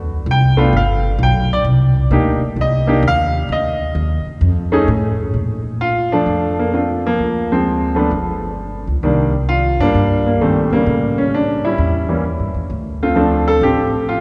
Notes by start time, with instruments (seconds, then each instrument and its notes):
Already playing: upright bass D2
0.26 upright bass C2
0.31 grand piano G5
0.57 grand piano A3 B3 D4 F4
0.73 upright bass G1, grand piano F5
1.19 upright bass B1
1.23 grand piano G5
1.53 grand piano D5
1.65 upright bass C2
2.11 upright bass D2, grand piano A#3 D4 D#4 G4
2.56 upright bass C2
2.61 grand piano D#5
2.87 grand piano A#3 D4 D#4 G4
3.03 upright bass D#2
3.08 grand piano F5
3.49 upright bass D2, grand piano D#5
3.95 upright bass D#2
4.26 muted upright bass stroke
4.41 upright bass F2
4.72 grand piano A3 C#4 D#4 G#4
4.88 upright bass A2
5.34 upright bass A#2
5.81 grand piano F4
6.12 grand piano F3 A3 D4
6.26 upright bass F2
6.59 grand piano A#3
6.73 grand piano A3 C4 D4 F4
7.06 grand piano F3 A#3
7.19 upright bass D2
7.52 grand piano F3 G#3 C4
7.95 grand piano F3 A3 B3 D4
8.11 upright bass G1
8.87 upright bass C#2
9.03 upright bass C2, grand piano D#3 G3 A#3 D4
9.49 grand piano F4
9.79 upright bass G2, grand piano G3 A#3 D4
9.94 upright bass G2
10.27 grand piano A#3
10.41 grand piano A#2 D#3 G3 A3 C4
10.71 grand piano C#3 G3 A#3, muted upright bass stroke
10.86 upright bass A2
11.18 grand piano C#4
11.34 grand piano D4
11.65 grand piano G3 C#4 E4
11.78 upright bass E2
12.09 grand piano E3 G3 A#3 C#4
12.40 upright bass G2
12.54 upright bass E2
12.70 upright bass D2
13.03 grand piano A3 C4 F4
13.15 grand piano F3 A3 C4 D4
13.48 grand piano A4
13.61 upright bass A1, grand piano C4 G4
14.09 grand piano F4